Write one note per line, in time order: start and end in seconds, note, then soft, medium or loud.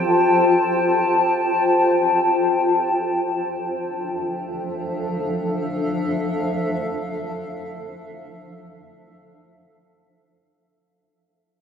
0.00 4.57 F4 medium
0.00 5.45 C5 medium
0.00 6.08 G5 medium
0.00 5.56 A5 medium
2.95 10.81 F3 medium
3.37 10.82 D4 medium
3.37 10.82 A4 medium
3.78 10.81 E5 medium
4.27 10.82 F5 medium